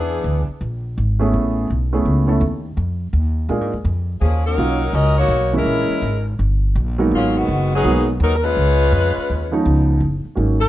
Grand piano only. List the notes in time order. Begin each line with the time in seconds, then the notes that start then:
1.19 A3 B3 C#4 E4 G#4
1.93 A3 B3 C#4 E4 G#4
2.27 A3 B3 C#4 E4 A4
3.49 G#3 A#3 D4 F4 G#4
4.58 F#3 A#3 C#4 D#4 F4
5.53 E3 G#3 A#3 C#4 E4
6.98 F#3 G#3 A#3 B3 D#4
7.84 F#3 G#3 A#3 B3 D#4
9.52 F3 G#3 B3 C#4 D#4
10.35 F#3 G#3 A#3 C#4 D#4